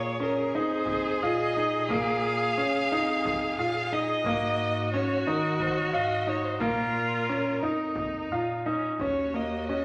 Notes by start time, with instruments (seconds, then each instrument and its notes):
Already playing: bass clarinet A#2, grand piano A#3, viola G#4, violin C#5
0.20 grand piano C#4, violin A#4
0.54 bass clarinet F2, grand piano D#4, violin C5
0.86 frame drum
1.21 bass clarinet A#2, grand piano F4, violin D#5, frame drum
1.57 grand piano D#4
1.88 bass clarinet A#2, grand piano A#3, violin F5, frame drum
2.58 grand piano C#4
2.91 bass clarinet F2, grand piano D#4
3.25 frame drum
3.58 bass clarinet A#2, grand piano F4, violin F5, frame drum
3.92 grand piano D#4, violin D#5
4.24 bass clarinet G#2, grand piano A#3, viola F#4, frame drum
4.93 grand piano C#4, violin C#5
5.26 bass clarinet D#3, grand piano D#4, violin A#4
5.59 violin C5, frame drum
5.78 violin C#5
5.92 bass clarinet G#2, violin D#5, grand piano F5, frame drum
6.27 grand piano D#4, violin C#5
6.45 violin C5
6.60 bass clarinet A#2, grand piano A#3, viola F4, violin A#4, frame drum
7.29 grand piano C#4
7.62 bass clarinet F2, viola D#4, grand piano D#4
7.95 frame drum
8.31 bass clarinet A#2, grand piano F4
8.65 viola C#4, grand piano D#4
8.99 bass clarinet D#2, grand piano C#4, viola F#4, violin C#5, frame drum
9.34 grand piano A#3, violin D#5
9.68 grand piano C#4, violin D#5